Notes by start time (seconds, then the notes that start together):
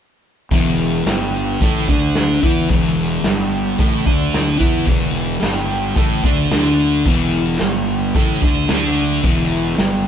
0.51 E1 E2 E3, kick, closed hi-hat
0.78 closed hi-hat
1.06 G1 G2 G3, snare, closed hi-hat
1.34 closed hi-hat
1.60 A1 A2 A3, kick, closed hi-hat
1.88 D2 D3 D4, kick, closed hi-hat
2.15 snare, closed hi-hat
2.42 E2 E3 E4, kick, closed hi-hat
2.69 E1 E2 E3, kick, closed hi-hat
2.98 closed hi-hat
3.24 G1 G2 G3, snare, closed hi-hat
3.52 closed hi-hat
3.78 A1 A2 A3, kick, closed hi-hat
4.06 D2 D3 D4, kick, closed hi-hat
4.34 snare, closed hi-hat
4.58 E2 E3 E4, kick, closed hi-hat
4.85 E1 E2 E3, kick, closed hi-hat
5.16 closed hi-hat
5.39 G1 G2 G3, snare, closed hi-hat
5.70 closed hi-hat
5.95 A1 A2 A3, kick, closed hi-hat
6.23 D2 D3 D4, kick, closed hi-hat
6.51 D2 D3 D4, snare, closed hi-hat
6.79 closed hi-hat
7.06 E1 E2 E3, kick, closed hi-hat
7.33 closed hi-hat
7.59 G1 G2 G3, snare, closed hi-hat
7.87 closed hi-hat
8.14 A1 A2 A3, kick, closed hi-hat
8.42 D2 D3 D4, kick, closed hi-hat
8.69 D2 D3 D4, snare, closed hi-hat
8.96 closed hi-hat
9.24 E1 E2 E3, kick, closed hi-hat
9.52 closed hi-hat
9.78 G1 G2 G3, snare, closed hi-hat